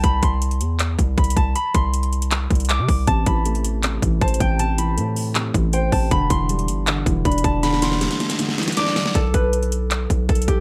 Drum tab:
HH |x-----------x-----------x-----x-----x-----------x-----------x-----------x---x---x---x-----------|x-----------x-----------x-----x-----x-----x-----x-----------x--x--x--x--x-----------o-----------|x-----------x-----------x-----x-----x-----------x-----------x-----------x---x---x---x-----------|x-----------x-----------x-----------o-----------x-----------x-----------x-----------o-----------|
CP |------------------------------------------------x-----------------------------------------------|------------------------------------------------x-----------------------x-----------------------|------------------------------------------------x-----------------------------------------------|------------------------------------------------x-----------------------------------------------|
SD |------------------------------------------------------------------------------------------------|------------------------------------------------------------------------------------------------|------------------------------------------------------------------------------------------------|------------------------------------------------------------------------------------------------|
BD |o-----------o-----------------------------------------------o-----------o-----------o-----------|------------o-----------------------------------------------o-----------------------o-----------|o-----------o-----------------------------------------------o-----------o-----------o-----------|------------------------------------------------------------o-----------------------o-----------|

HH |x-----------x-----------x-----x-----x-----------x-----------x-----------x---x---x---x-----------|x-----------x-----------x-----x-----x-----x-----x-----------x--x--x--x--x-----------o-----------|x-----------x-----------x-----x-----x-----------x-----------x-----------x---x---x---x-----------|
CP |------------------------------------------------x-----------------------------------------------|------------------------------------------------------------------------------------------------|------------------------------------------------x-----------------------------------------------|
SD |------------------------------------------------------------------------------------------------|o-----o-----o-----o-----o-----o-----o-----o-----o-----o-----o-----o-----o-----o-----o-----o-----|------------------------------------------------------------------------------------------------|
BD |o-----------o-----------------------------------------------o-----------o-----------o-----------|------------------------------------------------------------------------------------------------|o-----------o-----------------------------------------------o-----------o-----------o-----------|